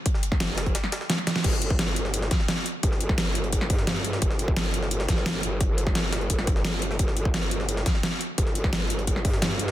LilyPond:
<<
  \new Staff \with { instrumentName = "Wobble bass" } { \clef bass \time 4/4 \key f \dorian \tempo 4 = 173 r4 f,,4 r2 | g,,2~ g,,8 r4. | g,,2~ g,,8 g,4. | g,,2~ g,,8 g,,4 g,,8~ |
g,,2 g,,2 | g,,2~ g,,8 r4. | g,,2~ g,,8 g,4. | }
  \new DrumStaff \with { instrumentName = "Drums" } \drummode { \time 4/4 <hh bd>16 sn16 hh16 <bd sn>16 <hh sn>8 <hh sn>16 <hh bd>16 <hh sn>16 sn16 <hh sn>16 sn16 <hh sn>16 <hh sn>16 <hh sn>16 sn16 | <cymc hh bd>16 sn16 hh16 bd16 <hh sn>16 hh16 hh16 sn16 hh16 sn16 <hh bd sn>16 sn16 <hh sn>16 sn16 hh8 | <hh bd>16 sn16 hh16 <bd sn>16 <hh sn>8 hh16 hh16 <hh bd>16 sn16 <hh hho bd>16 sn16 <hh sn>16 hh16 hh16 sn16 | <hh bd>16 sn16 hh16 bd16 <hh sn>16 hh16 hh16 sn16 hh16 sn16 <hh bd sn>16 sn16 <hh sn>16 sn16 hh8 |
<hh bd>8 hh16 <bd sn>16 <hh sn>8 <hh sn>16 hh16 <hh bd>16 sn16 <hh bd>16 sn16 <hh sn>16 hh16 hh16 sn16 | <hh bd>16 sn16 hh16 bd16 <hh sn>16 hh16 hh16 sn16 hh16 sn16 <hh bd sn>16 sn16 <hh sn>16 sn16 hh8 | <hh bd>16 sn16 hh16 <bd sn>16 <hh sn>8 hh16 hh16 <hh bd>16 sn16 <hh hho bd>16 sn16 <hh sn>16 hh16 hh16 sn16 | }
>>